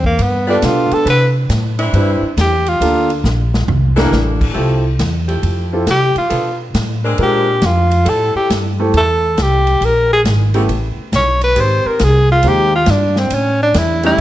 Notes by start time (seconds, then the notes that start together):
Already playing: E2
0.04 A#3, kick
0.19 G2 B3, ride
0.47 G3 B3 D4 F4 G4 A4 B4
0.62 B2 F4, snare, hi-hat pedal, ride
0.91 A4, muted upright bass stroke, ride
1.05 C3 E3 C4 D4 B4, ride
1.10 B4
1.49 A2, snare, hi-hat pedal, ride
1.79 E3 C4 D4 E4, ride
1.93 G2 C4 D4 E4 G4 B4, ride
2.22 muted upright bass stroke
2.37 E2 G4, snare, hi-hat pedal, ride
2.66 F4, ride
2.80 D2 A#3 D4 F4 G4 A4, ride
3.10 ride
3.24 A#1, snare, hi-hat pedal
3.54 snare
3.68 C2, floor tom
3.96 E3 A#3 D4 E4 G4 A4 A#4, snare
4.12 A1, snare, hi-hat pedal
4.41 kick, crash
4.53 C2 F3 A3 C4 E4 F4 G4 A4
4.99 E2, snare, hi-hat pedal, ride
5.27 F3 A3 E4 G4, ride
5.43 F2, ride
5.73 C4 E4 F4 G4 A4
5.87 C3, snare, hi-hat pedal, ride
5.91 G4
6.16 F4, muted upright bass stroke, ride
6.30 B2 F3 B3 D4 A4, ride
6.74 A2, snare, hi-hat pedal, ride
7.04 G#3 C4 D4 A#4
7.18 A#2 G#3 C4 D4 F4 A#4, ride
7.23 G4
7.62 F2 F4, snare, hi-hat pedal, ride
7.91 ride
8.06 A2 G3 C4 E4 A4, ride
8.35 G4, muted upright bass stroke
8.50 G2, snare, hi-hat pedal, ride
8.80 A3 C4 E4 G4 A4
8.93 E2 A4, ride
9.37 C2, snare, hi-hat pedal, ride
9.42 G4
9.67 ride
9.80 A#1, ride
9.85 A#4
10.13 G#4
10.24 G#1, snare, hi-hat pedal, ride
10.54 C#3 A3 B3 C#4 E4 G4, ride
10.68 A1, ride
10.97 muted upright bass stroke
11.12 B1 C#5, snare, hi-hat pedal, ride
11.41 B4, ride
11.56 G#1 D#3 G#3 C4 G4, ride
11.60 C5
11.85 A#4, muted upright bass stroke
11.99 C2, snare, hi-hat pedal, ride
12.04 G#4
12.32 F4
12.43 D#2 G#3 A#3 C4 D#4 G4, ride
12.48 G4
12.75 F4
12.86 G2, snare, hi-hat pedal, ride
12.91 D4
13.16 C4, snare
13.30 A2, ride
13.35 C#4
13.63 D4
13.74 E2, snare, hi-hat pedal, ride
13.78 E4
14.03 E3 G3 A3 C#4 E4 G4, ride